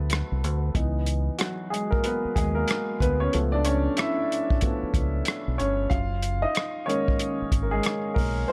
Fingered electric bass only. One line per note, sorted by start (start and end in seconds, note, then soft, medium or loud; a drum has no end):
0.00 0.21 D2 medium
0.32 0.44 C2 medium
0.44 0.70 D2 medium
0.75 1.28 C#2 medium
2.25 muted fingered electric bass stroke soft
2.37 2.63 D#2 medium
3.01 3.27 D2 medium
3.34 3.87 C#2 medium
4.83 muted fingered electric bass stroke soft
4.95 5.21 C#2 medium
5.48 5.57 B1 medium
5.60 5.86 G1 medium
5.92 6.44 F#1 medium
7.42 muted fingered electric bass stroke soft
7.53 7.79 G#1 medium
8.17 8.43 B1 medium